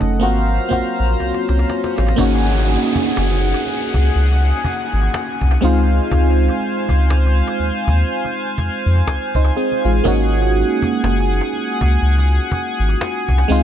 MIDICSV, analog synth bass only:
0, 0, Header, 1, 2, 480
1, 0, Start_track
1, 0, Tempo, 983607
1, 1064, Time_signature, 4, 2, 24, 8
1, 6651, End_track
2, 0, Start_track
2, 0, Title_t, "Analog synth bass"
2, 0, Program_c, 0, 38
2, 5, Note_on_c, 0, 30, 85
2, 108, Note_on_c, 0, 32, 103
2, 115, Note_off_c, 0, 30, 0
2, 287, Note_off_c, 0, 32, 0
2, 349, Note_on_c, 0, 34, 46
2, 403, Note_off_c, 0, 34, 0
2, 487, Note_on_c, 0, 34, 87
2, 562, Note_off_c, 0, 34, 0
2, 589, Note_on_c, 0, 36, 47
2, 644, Note_off_c, 0, 36, 0
2, 728, Note_on_c, 0, 36, 89
2, 802, Note_off_c, 0, 36, 0
2, 968, Note_on_c, 0, 33, 94
2, 1042, Note_off_c, 0, 33, 0
2, 1067, Note_on_c, 0, 32, 107
2, 1351, Note_off_c, 0, 32, 0
2, 1549, Note_on_c, 0, 30, 90
2, 1727, Note_off_c, 0, 30, 0
2, 1925, Note_on_c, 0, 37, 93
2, 2000, Note_off_c, 0, 37, 0
2, 2028, Note_on_c, 0, 37, 88
2, 2207, Note_off_c, 0, 37, 0
2, 2408, Note_on_c, 0, 32, 89
2, 2482, Note_off_c, 0, 32, 0
2, 2644, Note_on_c, 0, 36, 85
2, 2719, Note_off_c, 0, 36, 0
2, 2749, Note_on_c, 0, 37, 96
2, 2927, Note_off_c, 0, 37, 0
2, 2986, Note_on_c, 0, 37, 103
2, 3166, Note_off_c, 0, 37, 0
2, 3364, Note_on_c, 0, 37, 93
2, 3620, Note_off_c, 0, 37, 0
2, 3707, Note_on_c, 0, 39, 52
2, 3762, Note_off_c, 0, 39, 0
2, 3845, Note_on_c, 0, 39, 91
2, 3920, Note_off_c, 0, 39, 0
2, 4189, Note_on_c, 0, 41, 49
2, 4243, Note_off_c, 0, 41, 0
2, 4325, Note_on_c, 0, 41, 100
2, 4400, Note_off_c, 0, 41, 0
2, 4426, Note_on_c, 0, 37, 49
2, 4481, Note_off_c, 0, 37, 0
2, 4563, Note_on_c, 0, 37, 84
2, 4639, Note_off_c, 0, 37, 0
2, 4807, Note_on_c, 0, 33, 95
2, 4881, Note_off_c, 0, 33, 0
2, 4906, Note_on_c, 0, 32, 108
2, 5190, Note_off_c, 0, 32, 0
2, 5386, Note_on_c, 0, 30, 93
2, 5566, Note_off_c, 0, 30, 0
2, 5766, Note_on_c, 0, 37, 90
2, 5841, Note_off_c, 0, 37, 0
2, 5867, Note_on_c, 0, 37, 89
2, 6046, Note_off_c, 0, 37, 0
2, 6245, Note_on_c, 0, 32, 92
2, 6320, Note_off_c, 0, 32, 0
2, 6484, Note_on_c, 0, 36, 91
2, 6560, Note_off_c, 0, 36, 0
2, 6589, Note_on_c, 0, 37, 99
2, 6651, Note_off_c, 0, 37, 0
2, 6651, End_track
0, 0, End_of_file